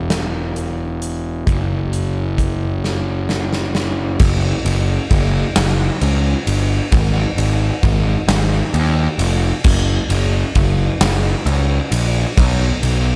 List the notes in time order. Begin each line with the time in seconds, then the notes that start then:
Already playing: E1
0.10 snare, closed hi-hat
0.56 closed hi-hat
1.02 closed hi-hat
1.47 F#1, kick, closed hi-hat
1.93 closed hi-hat
2.38 kick, closed hi-hat
2.84 snare
3.29 snare
3.53 snare
3.75 snare
4.20 F#1, kick, ride
4.65 F#1, ride
5.11 F#1, kick, ride
5.56 F#1, snare, ride
6.01 C#2, ride
6.47 G1, ride
6.92 G#1, kick, ride
7.37 G#1, ride
7.83 G#1, kick, ride
8.28 G#1, snare, ride
8.74 D#2, ride
9.18 F1, ride
9.64 F#1, kick, crash
10.09 F#1, ride
10.55 F#1, kick, ride
11.01 F#1, snare, ride
11.46 C#2, ride
11.91 A#1, ride
12.37 B1, kick, ride
12.83 B1, ride